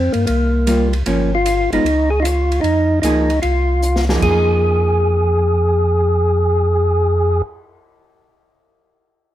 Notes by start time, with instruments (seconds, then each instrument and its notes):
Already playing: tonewheel organ C4
0.12 tonewheel organ G2 A#3, ride
0.27 tonewheel organ C2 A#3, ride
0.67 hollow-body jazz guitar G3 A#3 F4, hi-hat pedal, ride
0.93 ride
1.06 tonewheel organ G1, hollow-body jazz guitar F3 A#3 C#4, ride
1.35 tonewheel organ F4
1.46 hi-hat pedal, ride
1.72 tonewheel organ G1 D#4, hollow-body jazz guitar G#3 B3 F4, ride
1.84 tonewheel organ C#2, ride
2.10 tonewheel organ G#4
2.20 tonewheel organ D#4 F4
2.25 hi-hat pedal, ride
2.52 ride
2.61 tonewheel organ F2 D#4, ride
3.02 tonewheel organ C#2 D#4, hollow-body jazz guitar F3 A#3 D#4 G#4, hi-hat pedal, ride
3.30 ride
3.42 tonewheel organ C2 F4, ride
3.82 hi-hat pedal
3.96 snare
4.09 hollow-body jazz guitar F3 A#3 D#4 G#4, snare
4.18 hollow-body jazz guitar F3, kick, crash
4.22 tonewheel organ F2 G#4, hollow-body jazz guitar A#3
4.27 hollow-body jazz guitar D#4 G#4
4.49 cymbal swell